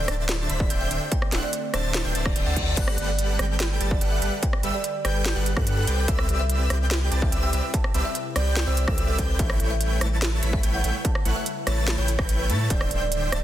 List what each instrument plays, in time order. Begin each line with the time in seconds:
Already playing: ambient pad D3 A3 C4 G4 A4
0.08 sub bass D1, supersaw synth D3 D4 C5 E5 A5, digital synth lead A6, cross-stick, closed hi-hat
0.29 snare, closed hi-hat
0.49 sub bass D1, supersaw synth D3 D4 C5 E5 B5, digital synth lead B6, closed hi-hat
0.60 kalimba D5, kick
0.70 sub bass D1, supersaw synth D3 D4 C5 E5 G5, digital synth lead G6, closed hi-hat
0.81 kalimba E5
0.91 sub bass D1, supersaw synth D3 D4 C5 E5 G5, digital synth lead G6, closed hi-hat
1.12 kalimba G5, kick, closed hi-hat
1.22 cross-stick
1.32 sub bass D1, supersaw synth D3 D4 C5 E5 F#5, digital synth lead F#6, snare, closed hi-hat
1.43 kalimba D5
1.53 closed hi-hat
1.74 sub bass D1, supersaw synth D3 D4 C5 E5 A5, kalimba C5, digital synth lead A6, cross-stick, closed hi-hat
1.94 snare, closed hi-hat, reverse cymbal
2.05 sub bass D1, supersaw synth D3 D4 C5 E5 G5, kalimba B4, digital synth lead G6
2.15 sub bass D1, supersaw synth D3 D4 C5 E5 A5, digital synth lead A6, closed hi-hat
2.26 kalimba D5, kick, cross-stick
2.36 sub bass D1, supersaw synth D3 D4 C5 E5 G5, digital synth lead G6, closed hi-hat
2.46 sub bass D2, supersaw synth D3 D4 C5 E5 A5, kalimba F#5, digital synth lead A6
2.56 kick, closed hi-hat
2.77 sub bass G1, ambient pad G3 B4, supersaw synth G3 G4 A4 B4 F#5, kalimba D5, digital synth lead F#6, kick, closed hi-hat, crash
2.88 cross-stick
2.98 sub bass G1, supersaw synth G3 G4 A4 B4 F#5, digital synth lead F#6, closed hi-hat
3.08 kalimba D5
3.19 closed hi-hat
3.39 sub bass G1, supersaw synth G3 G4 A4 B4 G5, digital synth lead G6, cross-stick, closed hi-hat
3.60 snare, closed hi-hat
3.81 sub bass G1, supersaw synth G3 G4 A4 B4 A5, digital synth lead A6, closed hi-hat
3.91 kalimba D5, kick
4.01 sub bass G1, supersaw synth G3 G4 A4 B4 F#5, digital synth lead F#6, closed hi-hat
4.12 kalimba E5
4.22 sub bass G1, supersaw synth G3 G4 A4 B4 F#5, digital synth lead F#6, closed hi-hat
4.43 kalimba G5, kick, closed hi-hat
4.53 cross-stick
4.63 sub bass G1, supersaw synth G3 G4 A4 B4 E5, digital synth lead E6, closed hi-hat
4.74 kalimba D5
4.84 closed hi-hat
5.05 sub bass G1, supersaw synth G3 G4 A4 B4 G5, kalimba B4, digital synth lead G6, cross-stick, closed hi-hat
5.25 snare, closed hi-hat
5.36 sub bass G1, supersaw synth G3 G4 A4 B4 F#5, kalimba B4, digital synth lead F#6
5.46 closed hi-hat
5.57 sub bass G2, supersaw synth G3 G4 A4 B4 F#5, kalimba A4, digital synth lead F#6, kick, cross-stick
5.67 sub bass G2, supersaw synth G3 G4 A4 B4 F#5, digital synth lead F#6, closed hi-hat
5.77 kalimba A4
5.87 sub bass C2, ambient pad C3 G3 E4, supersaw synth C4 G4 B4 D5 G5, digital synth lead G6, closed hi-hat
6.08 sub bass C2, supersaw synth C4 G4 B4 D5 E5, kalimba E5, digital synth lead E6, kick, closed hi-hat
6.19 cross-stick
6.29 sub bass C2, supersaw synth C4 G4 B4 D5 E5, digital synth lead E6, closed hi-hat
6.39 kalimba E5
6.50 closed hi-hat
6.70 sub bass C2, supersaw synth C4 G4 B4 D5 G5, digital synth lead G6, cross-stick, closed hi-hat
6.91 snare, closed hi-hat
7.12 sub bass C2, supersaw synth C4 G4 B4 D5 A5, digital synth lead A6, closed hi-hat
7.22 kalimba E5, kick
7.32 sub bass C2, supersaw synth C4 G4 B4 D5 E5, digital synth lead E6, closed hi-hat
7.43 kalimba G5
7.53 sub bass C2, supersaw synth C4 G4 B4 D5 E5, digital synth lead E6, closed hi-hat
7.74 kalimba A5, kick, closed hi-hat
7.84 cross-stick
7.94 sub bass C2, supersaw synth C4 G4 B4 D5 E5, digital synth lead E6, closed hi-hat
8.05 kalimba E5
8.15 closed hi-hat
8.36 sub bass C2, supersaw synth C4 G4 B4 D5 G5, kalimba D5, digital synth lead G6, cross-stick, closed hi-hat
8.56 snare, closed hi-hat
8.67 sub bass C2, supersaw synth C4 G4 B4 D5 E5, kalimba C5, digital synth lead E6
8.77 closed hi-hat
8.88 sub bass C2, supersaw synth C4 G4 B4 D5 E5, kalimba A4, digital synth lead E6, kick, cross-stick
8.98 sub bass C2, supersaw synth C4 G4 B4 D5 E5, digital synth lead E6, closed hi-hat
9.08 kalimba A4
9.19 sub bass C2, supersaw synth C4 G4 B4 D5 G5, digital synth lead G6, kick, closed hi-hat
9.39 sub bass A1, ambient pad C#3 A4, supersaw synth A3 E4 B4 C#5 G5, kalimba E5, digital synth lead G6, kick, closed hi-hat
9.50 cross-stick
9.60 sub bass A1, supersaw synth A3 E4 B4 C#5 G5, digital synth lead G6, closed hi-hat
9.71 kalimba E5
9.81 closed hi-hat
10.01 sub bass A1, supersaw synth A3 E4 B4 C#5 A5, digital synth lead A6, cross-stick, closed hi-hat
10.22 snare, closed hi-hat
10.43 sub bass A1, supersaw synth A3 E4 B4 C#5 B5, digital synth lead B6, closed hi-hat
10.53 kalimba E5, kick
10.63 sub bass A1, supersaw synth A3 E4 B4 C#5 G5, digital synth lead G6, closed hi-hat
10.74 kalimba F#5
10.84 sub bass A1, supersaw synth A3 E4 B4 C#5 G5, digital synth lead G6, closed hi-hat
11.05 kalimba A5, kick, closed hi-hat
11.15 cross-stick
11.25 sub bass A1, supersaw synth A3 E4 B4 C#5 F#5, digital synth lead F#6, closed hi-hat
11.36 kalimba E5
11.46 closed hi-hat
11.67 sub bass A1, supersaw synth A3 E4 B4 C#5 A5, kalimba C#5, digital synth lead A6, cross-stick, closed hi-hat
11.88 snare, closed hi-hat
11.98 sub bass A1, supersaw synth A3 E4 B4 C#5 G5, kalimba C#5, digital synth lead G6
12.08 closed hi-hat
12.19 sub bass A1, supersaw synth A3 E4 B4 C#5 G5, kalimba B4, digital synth lead G6, kick, cross-stick
12.29 sub bass A1, supersaw synth A3 E4 B4 C#5 G5, digital synth lead G6, closed hi-hat
12.39 kalimba B4
12.50 sub bass A2, supersaw synth A3 E4 B4 C#5 A5, digital synth lead A6, closed hi-hat
12.70 sub bass D1, ambient pad C3 A3 D4, supersaw synth D3 D4 C5 E5 G5, kalimba D5, digital synth lead G6, kick, closed hi-hat
12.81 cross-stick
12.91 sub bass D1, supersaw synth D3 D4 C5 E5 G5, digital synth lead G6, closed hi-hat
13.02 kalimba D5
13.12 closed hi-hat
13.32 sub bass D1, supersaw synth D3 D4 C5 E5 A5, digital synth lead A6, cross-stick, closed hi-hat